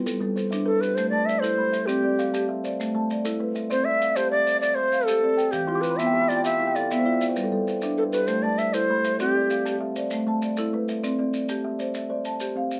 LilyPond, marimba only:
\new Staff \with { instrumentName = "Marimba" } { \time 12/8 \key c \major \tempo 4. = 131 << { f'8 a'8 a'4. a'4 a''8 d''4 b''4~ | b''8 d''8 d''4. d''4 a''8 d''4 b'4~ | b'8 d''8 d''4. d''4 c'''8 f''4 d''4~ | d''8 f'8 f'4. f'4 e''8 a'4 f'4~ |
f'8 a'4. r8 a'4 a''8 d''4 b''4~ | b''8 d''8 d''4. d''4 a''8 d''4 b'4~ | b'8 d''4. r8 c''4 d''8 a''4 f''4 | } \\ { g4 r8 d'4 r8 a4 r8 e'4 r8 | c'4 r8 g'4 r8 a4 r8 e'4 r8 | c'4 r8 g'4 r8 e''4 r8 g'4 r8 | e4 r8 b4 r8 g'4 r8 b4 r8 |
g4 r8 d'4 r8 a4 r8 e'4 r8 | c'4 r8 g'4 r8 a4 r8 e'4 r8 | c'4 r8 g'4 r8 e''4 r8 g'4 r8 | } >> }